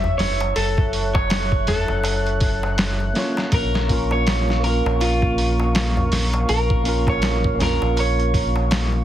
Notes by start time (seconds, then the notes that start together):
Already playing: F#1 C#5 E5 E6
0.04 darbuka tek, darbuka dum
0.18 F#1 C#5, snare, open hi-hat
0.40 closed hi-hat, darbuka tek
0.56 F#1 A4 F#6, open hi-hat, darbuka tek
0.77 kick, darbuka tek
0.93 open hi-hat
1.14 C#5, kick, darbuka tek
1.30 snare, open hi-hat, darbuka tek
1.52 kick, darbuka tek
1.67 A4, snare, open hi-hat, darbuka dum
1.88 F#1, darbuka tek
2.04 open hi-hat, darbuka tek
2.26 closed hi-hat, darbuka tek
2.40 kick, open hi-hat
2.63 darbuka tek
2.78 snare, open hi-hat, darbuka tek
3.00 darbuka tek
3.14 A#3 C#4 F4, snare, open hi-hat
3.18 C#5
3.37 snare, darbuka tek
3.52 A#1 A#4 F5 C#6, kick, open hi-hat, darbuka tek
3.74 snare, darbuka tek
3.88 A#3 C#4 F4, kick, open hi-hat
3.93 A#4
4.11 C#5, darbuka tek
4.27 snare, open hi-hat, darbuka tek
4.49 snare, darbuka tek
4.60 A#3 C#4
4.64 F4 A#4, open hi-hat
4.70 A#4
4.85 A#1, darbuka tek
5.01 F4, open hi-hat, darbuka tek
5.22 kick, darbuka tek
5.38 open hi-hat
5.60 darbuka tek
5.75 snare, open hi-hat, darbuka tek
5.97 darbuka tek, darbuka dum
6.11 A#1, snare, open hi-hat
6.34 closed hi-hat, darbuka tek
6.49 A#1 A#4, open hi-hat, darbuka tek
6.70 kick, darbuka tek
6.84 A#3 C#4, open hi-hat
6.88 F4 A#4
7.07 C#5, kick, darbuka tek
7.22 snare, open hi-hat, darbuka tek
7.44 kick, darbuka tek
7.55 A#3 C#4
7.60 F4 A#4, snare, open hi-hat, darbuka dum
7.65 A#4
7.81 A#1, darbuka tek
7.97 C#5, open hi-hat, darbuka tek
8.19 closed hi-hat, darbuka tek
8.34 kick, open hi-hat
8.56 darbuka tek
8.71 snare, open hi-hat, darbuka tek
8.93 darbuka tek